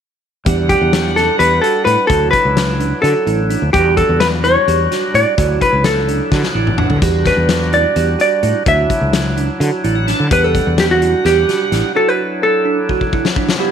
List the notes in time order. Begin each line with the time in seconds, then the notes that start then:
0.45 E2 G3 D4 G4 F#5, kick, closed hi-hat
0.69 G4, kick, closed hi-hat
0.81 E2
0.93 snare, closed hi-hat
1.16 E4 A4, snare, closed hi-hat
1.39 E2 G4 B4, closed hi-hat
1.61 F#4 A4, closed hi-hat
1.85 A2 E4 B4, closed hi-hat
2.07 D2 F#3 D4 E4 F#4 A4, kick, closed hi-hat
2.31 B4, kick, closed hi-hat
2.45 C#2
2.57 snare, closed hi-hat
2.80 D4, closed hi-hat
3.02 D3 F#4 A4, closed hi-hat
3.27 A1 E4, closed hi-hat
3.50 D4, closed hi-hat
3.62 D2
3.73 E2 G3 D4 F#4 G4, kick, closed hi-hat
3.97 A4, kick, closed hi-hat
4.09 E2
4.20 B4, snare, closed hi-hat
4.44 E4 C#5, closed hi-hat
4.68 E2 G4, closed hi-hat
4.91 F#4, snare, closed hi-hat
5.14 A2 E4 D5, closed hi-hat
5.37 D2 F#3 D4 E4 F#4, kick, closed hi-hat
5.61 B4, kick, closed hi-hat
5.73 C#2
5.84 A4, snare, closed hi-hat
6.08 D4, closed hi-hat
6.32 D3 F#4, kick, snare
6.43 snare
6.55 A1 E4 D5
6.67 mid tom
6.78 D4 F#5, mid tom
6.90 D3, floor tom
7.01 E2 G3 D4 F#4 G4, kick, closed hi-hat, splash
7.26 B4, kick, snare, closed hi-hat
7.37 E2
7.49 snare, closed hi-hat
7.73 E4 D5, closed hi-hat
7.96 E2 G4, closed hi-hat
8.19 F#4 D5, closed hi-hat
8.43 A2 E4, closed hi-hat
8.66 D2 F#3 D4 E4 F#4 E5, kick, closed hi-hat
8.90 kick, closed hi-hat
9.01 C#2
9.13 snare, closed hi-hat
9.37 D4, closed hi-hat
9.60 D3 F#4, closed hi-hat
9.84 A1 E4 D5, closed hi-hat
9.95 F#5
10.07 D4 A5, snare, closed hi-hat
10.20 D3
10.31 E2 G3 D4 G4 B4 F#5, kick, closed hi-hat
10.44 A4
10.55 kick, closed hi-hat
10.67 E2
10.78 G4, snare, closed hi-hat
10.91 F#4
11.01 E4, closed hi-hat
11.25 E2 G4, snare, closed hi-hat
11.48 F#4, snare, closed hi-hat
11.72 A1 E4, snare, closed hi-hat
11.95 F#3 D4 E4 F#4 A4
12.09 B4
12.43 A4
12.65 D4
12.89 F#4, kick
13.01 kick
13.13 E4, kick
13.25 snare
13.36 D4, kick
13.49 snare
13.58 G3 B3 E4 G4